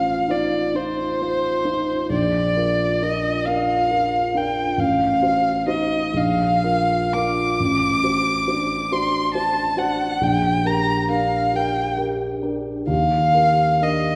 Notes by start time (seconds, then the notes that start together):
Already playing: A1 F4 C5 F5
0.28 D#4 F4 C5 D5
0.75 D#4 F4 C5
1.21 F4 C5
1.65 D#4 F4 C5
2.10 A#1 D5
2.56 F4 A#4
3.02 D4 F4 A#4 D#5
3.45 D4 F4 A#4 F5
3.91 F4 A#4
4.34 D4 F4 A#4 G5
4.78 A1 F5
5.22 F#4 C5
5.67 D#4 F#4 C5 D#5
6.14 A#1 F5
6.64 F4 A#4
7.14 D4 F4 A#4 D6
7.60 A1
8.03 F#4 C5
8.47 D4 F#4 C5
8.91 D4 F#4 C5 C6
9.34 F#4 C5 A5
9.76 D4 F#4 C5 F#5
10.21 A#1 G5
10.65 G4 A#4 A#5
11.09 D4 G4 A#4 F5
11.53 D4 G4 A#4 G5
11.97 G4 A#4
12.42 D4 G4 A#4
12.87 D#2 F5
13.34 G4 A#4
13.81 D4 G4 A#4 D#5